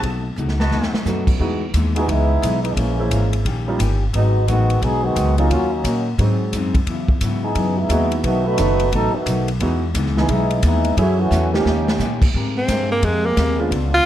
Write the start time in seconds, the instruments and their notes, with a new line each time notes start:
0.03 upright bass B1, hollow-body jazz guitar B2 A3 D#4 F#4, kick, ride
0.36 upright bass C#2, hollow-body jazz guitar B2 A3 D#4 F#4, hi-hat pedal
0.48 snare
0.59 trumpet section F#4 B4 D#5 A5, snare
0.70 upright bass D#2, hollow-body jazz guitar B2 A3 D#4 F#4, snare
0.83 snare
0.93 muted upright bass stroke, snare
1.05 upright bass F#2, hollow-body jazz guitar B2 A3 D#4 F#4, grand piano A3 B3 C#4 D#4 F#4, snare, hi-hat pedal
1.27 kick, crash
1.40 upright bass E2, hollow-body jazz guitar E3 G#3 B3 D#4, grand piano G#3 B3 D#4 E4 F#4, kick
1.74 upright bass D#2, hollow-body jazz guitar E3 G#3 B3 D#4, kick, hi-hat pedal, ride
1.96 trombone section E3 B3 D#4 G#4, grand piano G#3 B3 D#4 E4 F#4, ride
2.07 upright bass C#2, hollow-body jazz guitar E3 G#3 B3 D#4, trombone section G#3 B3 D#4 E4, kick, ride
2.42 upright bass B1, hollow-body jazz guitar E3 G#3 B3 D#4, kick, hi-hat pedal, ride
2.62 trombone section E3 G#3 B3 D#4, ride
2.75 upright bass A#1, hollow-body jazz guitar A#2 E3 G#3, trombone section E3 G#3 A#3 C#4, kick, ride
2.80 hollow-body jazz guitar C#4
2.99 grand piano G#3 A#3 C#4 E4 C5
3.11 upright bass G#1, hollow-body jazz guitar A#2 E3 G#3 C#4, kick, hi-hat pedal, ride
3.33 ride
3.45 upright bass A#1, hollow-body jazz guitar D#3 A#3 C#4 G4, kick, ride
3.68 grand piano G3 A#3 C#4 D#4 F4
3.79 upright bass G1, hollow-body jazz guitar D#3 A#3 C#4 G4, kick, hi-hat pedal, ride
4.13 upright bass G#1, hollow-body jazz guitar G#2 F#3 B3 D#4, trombone section F#3 G#3 B3 D#4, kick, ride
4.47 upright bass A1, hollow-body jazz guitar G#2 F#3 B3 D#4, trombone section D#3 G#3 B3 F#4, kick, hi-hat pedal, ride
4.70 ride
4.82 upright bass B1, hollow-body jazz guitar G#2 F#3 B3 D#4, trombone section F#3 B3 D#4 G#4, kick, ride
5.04 trombone section D#3 G#3 B3 F#4
5.16 upright bass C#2, hollow-body jazz guitar G#2 F#3 B3 D#4, kick, hi-hat pedal, ride
5.37 trombone section F#3 B3 D#4 G#4, grand piano F#3 A#3 C#4 D#4 F4, ride
5.50 upright bass D#2, hollow-body jazz guitar D#3 A#3 C#4 F#4, trombone section F#3 A#3 C#4 F4, kick, ride
5.72 trombone section F#3 A#3 C#4 D#4
5.84 upright bass A#2, hollow-body jazz guitar D#3 A#3 C#4 F#4, kick, hi-hat pedal, ride
6.18 upright bass G#2, hollow-body jazz guitar G#2 F#3 C4, grand piano F#3 G#3 C4 D#4 F#4, kick, ride
6.23 hollow-body jazz guitar D#4
6.52 upright bass F#2, hollow-body jazz guitar G#2 F#3 C4 D#4, kick, hi-hat pedal, ride
6.75 kick, ride
6.86 upright bass E2, hollow-body jazz guitar C#3 F#3 B3 E4, kick, ride
7.08 kick
7.21 upright bass G#2, hollow-body jazz guitar C#3 F#3 B3 E4, kick, hi-hat pedal, ride
7.43 trombone section E3 B3 D#4 G#4
7.55 upright bass F#2, hollow-body jazz guitar C#3 F#3 B3 E4, kick, ride
7.78 trombone section G#3 B3 D#4 E4
7.89 upright bass D#2, hollow-body jazz guitar C#3 F#3 B3 E4, grand piano G#3 B3 D#4 E4 F#4, kick, hi-hat pedal, ride
8.12 ride
8.24 upright bass B1, hollow-body jazz guitar B2 F#3 A3 D#4, trombone section D#3 A3 B3 F#4, kick, ride
8.45 trombone section A3 D#4 F#4 B4
8.58 upright bass F#1, hollow-body jazz guitar B2 F#3 A3 D#4, grand piano D#3 A3 B3 C#4 F#4, kick, hi-hat pedal, ride
8.80 ride
8.92 upright bass A1, hollow-body jazz guitar B2 F#3 A3 D#4, trombone section F#3 B3 D#4 A4, kick, ride
9.15 trombone section D#3 A3 B3 F#4
9.26 upright bass B1, hollow-body jazz guitar B2 F#3 A3 D#4, kick, hi-hat pedal, ride
9.48 ride
9.60 upright bass E2, grand piano E3 G#3 B3 D#4 F#4, hollow-body jazz guitar E3 G#3 B3 D#4, kick, ride
9.94 upright bass C#2, hollow-body jazz guitar E3 G#3 B3 D#4, kick, hi-hat pedal, ride
10.06 snare
10.16 grand piano E3 G#3 B3 D#4 G#4, trombone section E3 B3 D#4 G#4, snare
10.29 upright bass B1, hollow-body jazz guitar E3 G#3 B3 D#4, trombone section G#3 B3 D#4 E4, kick, ride
10.50 ride
10.63 upright bass D#2, hollow-body jazz guitar E3 G#3 B3 D#4, trombone section G#3 B3 D#4 E4, kick, hi-hat pedal, ride
10.85 ride
10.97 upright bass F#2, hollow-body jazz guitar F#2 E3 A3 C#4, grand piano F#3 A3 C#4 E4 G#4, trombone section F#3 A3 C#4 E4, kick, ride
11.19 trombone section E3 A3 C#4 F#4
11.31 upright bass E2, hollow-body jazz guitar F#2 E3 A3 C#4, snare, hi-hat pedal
11.53 trombone section D#3 A#3 C#4 G4, grand piano F3 A#3 C#4 D#4 G4, snare
11.65 upright bass D#2, hollow-body jazz guitar D#3 A#3 C#4 G4, snare
11.88 snare
11.99 upright bass A#2, hollow-body jazz guitar D#3 A#3 C#4 G4, snare, hi-hat pedal
12.22 kick, crash
12.34 upright bass G#2, trombone section C3 A#3 G4 G#4, hollow-body jazz guitar G#3 C4 G4 A#4, kick
12.57 tenor saxophone C4
12.68 upright bass G2, hollow-body jazz guitar G#3 C4 G4 A#4, kick, snare, hi-hat pedal, ride
12.91 tenor saxophone A#3
13.02 upright bass F2, hollow-body jazz guitar G#3 C4 G4, tenor saxophone G#3, kick, ride
13.06 hollow-body jazz guitar A#4
13.25 tenor saxophone A#3
13.37 upright bass D#2, hollow-body jazz guitar G#3 C4 G4 A#4, kick, snare, hi-hat pedal, ride
13.58 grand piano G#3 B3 C#4 D4 F4
13.70 upright bass C#2, trombone section C#3 D3 B3 F4, hollow-body jazz guitar C#3 F3 B3 D4, kick, ride
13.94 tenor saxophone F4